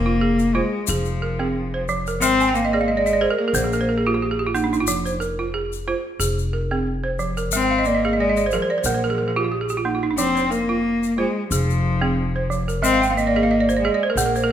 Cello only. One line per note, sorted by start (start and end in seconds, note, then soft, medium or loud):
0.00 0.56 A#3 loud
0.55 0.89 G#3 medium
0.87 1.87 F3 medium
2.21 2.56 C4 loud
2.54 2.81 A#3 medium
2.81 2.89 A#3 medium
2.88 3.39 G#3 medium
3.39 4.50 A#3 medium
7.53 7.87 C4 loud
7.86 8.18 A#3 medium
8.19 8.50 G#3 medium
8.52 8.58 F3 medium
8.59 8.65 F3 soft
8.66 8.74 F3 medium
8.75 8.80 F3 soft
8.81 8.87 F3 medium
8.87 8.96 F3 soft
8.96 9.04 F3 soft
9.04 9.11 F3 soft
9.11 9.19 F3 soft
9.20 9.25 F3 soft
9.25 9.34 F3 medium
9.36 9.43 F3 medium
10.18 10.52 C4 loud
10.51 11.18 A#3 loud
11.19 11.49 G#3 medium
11.50 12.46 F3 medium
12.83 13.08 C4 loud
13.10 13.16 C4 medium
13.14 13.80 A#3 loud
13.81 14.15 G#3 medium
14.13 14.52 A#3 medium